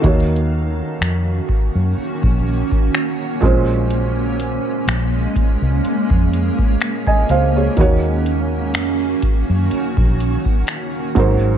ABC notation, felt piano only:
X:1
M:4/4
L:1/16
Q:"Swing 16ths" 1/4=62
K:Ebdor
V:1 name="Felt piano"
z16 | z12 z [ea] [cf] [Ad]- | [Ad] z12 z3 |]
V:2 name="Felt piano"
[E,B,Gd]12- [E,B,Gd]2 [B,,A,Dc]2- | [B,,A,Dc]12- [B,,A,Dc]2 z2 | [E,B,Gd]12- [E,B,Gd]2 [A,,G,Bc]2 |]